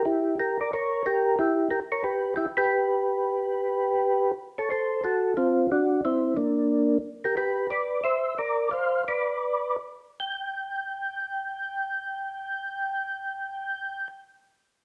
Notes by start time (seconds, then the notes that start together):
0.05 E4 G4
0.40 G4 A#4
0.61 A#4 D5
0.73 A#4 C#5
1.06 G4 A#4
1.39 E4 G4
1.71 G4 A#4
1.92 A#4 C#5
2.04 G4 B4
2.36 E4 G4
2.57 G4 B4
4.58 A4 C#5
4.70 A4 C5
5.04 F#4 A4
5.37 C4 F4
5.72 D4 F#4
6.05 C4 E4
6.37 A#3 D4
7.24 G4 A#4
7.37 G4 B4
7.71 B4 D5
8.04 C5 E5
8.38 A#4 D5
8.71 C5 F5
9.08 B4 D5
10.20 G5